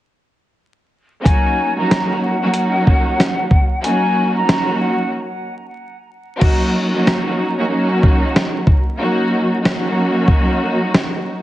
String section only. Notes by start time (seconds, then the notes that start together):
1.24 F#3 A#3 C#4 D#4 F#4
1.78 F#3 A#3 C#4 D#4 F#4
2.43 F#3 A#3 C#4 D#4 F#4
2.52 F#3 A#3 C#4 D#4 F#4
3.83 F#3 A#3 C#4 D#4 F#4
4.45 F#3 A#3 C#4 D#4 F#4
6.40 F#3 A#3 C#4 D#4 F#4
6.94 F#3 A#3 C#4 D#4 F#4
7.59 F#3 A#3 C#4 D#4 F#4
7.68 F#3 A#3 C#4 D#4 F#4
8.99 F#3 A#3 C#4 D#4 F#4
9.62 F#3 A#3 C#4 D#4 F#4